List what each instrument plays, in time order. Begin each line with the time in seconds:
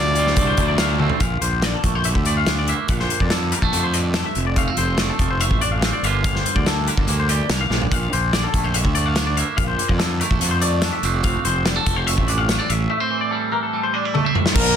Already playing: fingered electric bass D2, clean electric guitar D2 D3 C4 F4 F5, overdriven electric guitar D3 F3 A3 D4, trumpet D5
0.15 overdriven electric guitar F3 A3 D4, clean electric guitar F4 D5, closed hi-hat
0.20 overdriven electric guitar D3
0.27 clean electric guitar C5, snare
0.36 fingered electric bass C2, overdriven electric guitar D3 F3 A3, clean electric guitar A3 A4, kick, closed hi-hat
0.40 overdriven electric guitar D4
0.47 clean electric guitar C5
0.57 fingered electric bass D2, clean electric guitar D3, overdriven electric guitar D3 F3 A3 D4, kick, closed hi-hat
0.68 clean electric guitar D5
0.78 overdriven electric guitar D3 F3 A3 D4, clean electric guitar A3 F5, snare, closed hi-hat
0.99 overdriven electric guitar F3 A3 D4, clean electric guitar C4 A4, high tom
1.10 floor tom
1.20 fingered electric bass A#1, clean electric guitar A#2 F5, kick, closed hi-hat
1.41 fingered electric bass A#1, clean electric guitar A#3 C5, closed hi-hat
1.62 clean electric guitar D3 D5, snare, closed hi-hat
1.74 clean electric guitar A4
1.84 fingered electric bass A#1, clean electric guitar A3, kick, closed hi-hat
1.95 clean electric guitar C5
2.04 clean electric guitar D3 E5, closed hi-hat
2.15 fingered electric bass D2, kick
2.25 clean electric guitar A3 D5, closed hi-hat
2.37 clean electric guitar F5
2.46 clean electric guitar D4, snare, closed hi-hat
2.58 clean electric guitar D5
2.68 clean electric guitar A#3 E5, closed hi-hat
2.88 fingered electric bass A#1, clean electric guitar A#2 F5, kick, closed hi-hat
2.99 clean electric guitar C5, snare
3.10 clean electric guitar A#3, closed hi-hat
3.20 fingered electric bass F2, clean electric guitar D5, kick
3.30 clean electric guitar D3 A4, snare, closed hi-hat
3.52 clean electric guitar G3 A#4, closed hi-hat
3.62 fingered electric bass A#1, clean electric guitar A3 A4, kick
3.73 fingered electric bass F2, clean electric guitar D3, closed hi-hat
3.83 clean electric guitar C5
3.94 clean electric guitar A2 D5, closed hi-hat
4.14 clean electric guitar G2 A4, snare, closed hi-hat
4.26 clean electric guitar E5
4.35 fingered electric bass F1, clean electric guitar F2, closed hi-hat
4.47 clean electric guitar D5
4.56 clean electric guitar A3 F5, kick, closed hi-hat
4.68 clean electric guitar C4
4.77 fingered electric bass F1, clean electric guitar F3 C5, closed hi-hat
4.98 clean electric guitar A3 D5, snare, closed hi-hat
5.10 clean electric guitar A4
5.19 fingered electric bass F1, clean electric guitar F3, kick, closed hi-hat
5.30 clean electric guitar C5
5.41 clean electric guitar A3 E5, closed hi-hat
5.51 fingered electric bass A1, kick
5.61 clean electric guitar D4 D5, closed hi-hat
5.72 clean electric guitar F5
5.82 clean electric guitar C4, snare, closed hi-hat
5.93 clean electric guitar D5
6.03 fingered electric bass G1, clean electric guitar G2 D3 A#3 D4 F4 E5, closed hi-hat
6.24 clean electric guitar D4 F5, kick, closed hi-hat
6.35 clean electric guitar C5, snare
6.45 clean electric guitar D3, closed hi-hat
6.55 fingered electric bass D2, clean electric guitar D5, kick
6.66 clean electric guitar A#3 A4, snare, closed hi-hat
6.87 clean electric guitar D3 A#4, closed hi-hat
6.97 fingered electric bass G1, clean electric guitar A4, kick
7.08 fingered electric bass D2, clean electric guitar A#3, closed hi-hat
7.20 clean electric guitar C5
7.29 clean electric guitar G4 D5, closed hi-hat
7.49 fingered electric bass C2, clean electric guitar D4 A#4, snare, closed hi-hat
7.61 clean electric guitar F5
7.70 fingered electric bass A#1, clean electric guitar G2, snare
7.82 clean electric guitar D5, floor tom
7.91 fingered electric bass A#1, clean electric guitar A#2 F5, kick, closed hi-hat
8.13 fingered electric bass A#1, clean electric guitar A#3 C5, closed hi-hat
8.33 clean electric guitar D3 D5, snare, closed hi-hat
8.43 clean electric guitar A4
8.54 fingered electric bass A#1, clean electric guitar A3, kick, closed hi-hat
8.64 clean electric guitar C5
8.74 clean electric guitar D3 E5, closed hi-hat
8.85 fingered electric bass D2, kick
8.95 clean electric guitar A3 D5, closed hi-hat
9.06 clean electric guitar F5
9.16 clean electric guitar D4, snare, closed hi-hat
9.27 clean electric guitar D5
9.37 clean electric guitar A#3 E5, closed hi-hat
9.57 fingered electric bass A#1, clean electric guitar A#2 F5, kick, closed hi-hat
9.68 clean electric guitar C5
9.78 clean electric guitar A#3, closed hi-hat
9.88 fingered electric bass F2, clean electric guitar D5, kick
9.99 clean electric guitar D3 A4, snare, closed hi-hat
10.20 clean electric guitar A3 A#4, closed hi-hat
10.30 fingered electric bass A#1, clean electric guitar A4, kick
10.40 fingered electric bass F2, clean electric guitar D3, closed hi-hat
10.51 clean electric guitar C5
10.61 clean electric guitar A3 D5, closed hi-hat
10.82 clean electric guitar D4 A4, snare, closed hi-hat
10.93 clean electric guitar E5
11.03 fingered electric bass F1, clean electric guitar F2 F3 A3 C4 D4, closed hi-hat
11.14 clean electric guitar D5
11.24 clean electric guitar C4 F5, kick, closed hi-hat
11.45 fingered electric bass F1, clean electric guitar F3 C5, closed hi-hat
11.65 clean electric guitar G3 D5, snare, closed hi-hat
11.76 clean electric guitar A3 A4
11.86 fingered electric bass F1, clean electric guitar F3, kick, closed hi-hat
11.96 clean electric guitar C5
12.07 clean electric guitar A3 E5, closed hi-hat
12.18 fingered electric bass A1, kick
12.27 clean electric guitar D4 D5, closed hi-hat
12.38 clean electric guitar F5
12.49 clean electric guitar A3, snare, closed hi-hat
12.58 clean electric guitar C4 D5
12.69 fingered electric bass A1, clean electric guitar A2 E5, closed hi-hat
12.90 clean electric guitar A3 E5
13.00 clean electric guitar C4 C5
13.10 clean electric guitar E3
13.21 clean electric guitar D5
13.31 clean electric guitar G3 A4
13.52 clean electric guitar E3 A#4
13.63 clean electric guitar A4
13.73 clean electric guitar G3
13.83 clean electric guitar C5
13.94 clean electric guitar D4 D5
14.05 clean electric guitar E4
14.14 clean electric guitar A3 A4, high tom
14.25 clean electric guitar C4 E5
14.35 clean electric guitar A2, mid tom
14.46 clean electric guitar C5, snare
14.55 fingered electric bass A#1, overdriven electric guitar A#2 F3 A#3 D4, trumpet A#4, clean electric guitar A#4, kick, crash